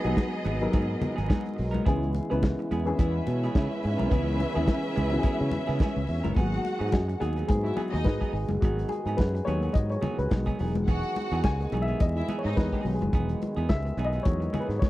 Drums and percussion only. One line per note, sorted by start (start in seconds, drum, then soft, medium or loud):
0.04 closed hi-hat soft
0.17 kick loud
0.17 snare medium
0.17 high conga medium
0.33 closed hi-hat soft
0.45 closed hi-hat medium
0.45 muted conga soft
0.61 closed hi-hat soft
0.73 kick loud
0.73 closed hi-hat medium
0.73 muted conga medium
1.02 closed hi-hat medium
1.02 muted conga medium
1.02 low conga medium
1.18 snare soft
1.18 closed hi-hat soft
1.30 kick loud
1.30 snare loud
1.30 high conga medium
1.46 closed hi-hat soft
1.58 open hi-hat medium
1.74 closed hi-hat soft
1.74 high conga medium
1.86 kick loud
1.86 closed hi-hat medium
2.03 closed hi-hat soft
2.15 closed hi-hat medium
2.15 muted conga soft
2.31 closed hi-hat soft
2.43 kick loud
2.43 snare medium
2.43 high conga medium
2.59 closed hi-hat soft
2.71 closed hi-hat medium
2.71 muted conga soft
2.86 closed hi-hat soft
2.99 kick loud
2.99 closed hi-hat medium
2.99 muted conga medium
3.27 closed hi-hat medium
3.27 muted conga medium
3.43 snare soft
3.43 closed hi-hat soft
3.55 kick loud
3.55 snare loud
3.55 high conga medium
3.71 closed hi-hat soft
3.83 open hi-hat medium
3.99 closed hi-hat soft
3.99 high conga medium
4.11 kick loud
4.11 closed hi-hat medium
4.28 closed hi-hat soft
4.40 closed hi-hat medium
4.40 muted conga medium
4.54 closed hi-hat soft
4.68 kick medium
4.68 snare loud
4.68 high conga medium
4.96 closed hi-hat medium
4.96 muted conga soft
4.96 low conga medium
5.11 closed hi-hat soft
5.23 kick loud
5.23 closed hi-hat medium
5.23 muted conga medium
5.40 closed hi-hat soft
5.51 closed hi-hat medium
5.51 muted conga medium
5.51 low conga medium
5.68 snare soft
5.68 closed hi-hat soft
5.80 kick loud
5.80 snare loud
5.80 high conga medium
5.96 closed hi-hat soft
6.08 open hi-hat medium
6.24 closed hi-hat soft
6.24 high conga medium
6.36 kick loud
6.36 closed hi-hat medium
6.53 closed hi-hat soft
6.65 closed hi-hat medium
6.65 muted conga soft
6.81 closed hi-hat soft
6.92 kick medium
6.92 snare loud
6.92 high conga medium
7.10 closed hi-hat soft
7.21 closed hi-hat medium
7.21 muted conga soft
7.37 closed hi-hat soft
7.49 kick loud
7.49 closed hi-hat medium
7.49 muted conga medium
7.66 closed hi-hat soft
7.77 closed hi-hat medium
7.77 muted conga medium
7.95 snare soft
7.95 closed hi-hat soft
8.04 kick loud
8.04 snare loud
8.04 high conga medium
8.21 kick medium
8.21 closed hi-hat soft
8.35 open hi-hat medium
8.49 closed hi-hat soft
8.49 high conga medium
8.62 kick loud
8.62 closed hi-hat medium
8.79 closed hi-hat medium
8.89 closed hi-hat medium
8.89 muted conga soft
9.07 closed hi-hat soft
9.18 kick loud
9.18 snare loud
9.18 high conga medium
9.36 closed hi-hat soft
9.47 closed hi-hat medium
9.62 closed hi-hat soft
9.74 kick loud
9.74 closed hi-hat medium
9.74 muted conga medium
9.92 closed hi-hat soft
10.03 closed hi-hat medium
10.03 muted conga medium
10.03 low conga medium
10.19 closed hi-hat soft
10.31 kick loud
10.31 snare loud
10.31 high conga medium
10.47 kick medium
10.47 closed hi-hat soft
10.59 open hi-hat medium
10.75 closed hi-hat soft
10.75 high conga medium
10.88 kick loud
10.88 closed hi-hat medium
11.04 closed hi-hat soft
11.16 closed hi-hat medium
11.16 muted conga medium
11.32 closed hi-hat soft
11.44 kick loud
11.44 snare loud
11.44 high conga medium
11.61 closed hi-hat soft
11.72 closed hi-hat medium
11.72 muted conga soft
11.88 closed hi-hat soft
12.00 kick loud
12.00 closed hi-hat medium
12.00 muted conga medium
12.17 closed hi-hat soft
12.29 closed hi-hat medium
12.29 muted conga medium
12.46 closed hi-hat soft
12.57 kick loud
12.57 snare loud
12.57 high conga medium
12.72 kick medium
12.72 closed hi-hat soft
12.85 open hi-hat medium
13.01 closed hi-hat soft
13.01 high conga medium
13.13 kick loud
13.13 closed hi-hat medium
13.29 closed hi-hat soft
13.42 closed hi-hat medium
13.42 muted conga medium
13.57 closed hi-hat soft
13.69 kick loud
13.69 snare loud
13.69 high conga medium
13.86 closed hi-hat soft
13.98 closed hi-hat medium
13.98 muted conga soft
14.13 closed hi-hat soft
14.25 kick loud
14.25 closed hi-hat medium
14.25 muted conga medium
14.42 closed hi-hat soft
14.54 closed hi-hat medium
14.54 muted conga soft
14.54 low conga medium
14.70 snare soft
14.70 closed hi-hat soft
14.82 kick loud
14.82 snare medium
14.82 high conga medium